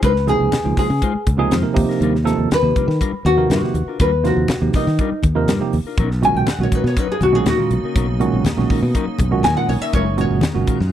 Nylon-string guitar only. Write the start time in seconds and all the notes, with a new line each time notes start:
0.04 B4
0.29 G#4
0.79 G#4
2.53 B4
3.26 F#4
3.51 F#4
4.01 B4
4.26 F#4
4.75 D#4
6.25 G#5
6.36 G5
6.50 F#5
6.63 C#5
6.75 B4
6.87 C#5
6.99 B4
7.12 G#4
7.23 F#4
7.35 G#4
7.49 F#4
9.44 G#5
9.57 F#5
9.69 C#5
9.82 E5
9.95 C#5
10.21 C#5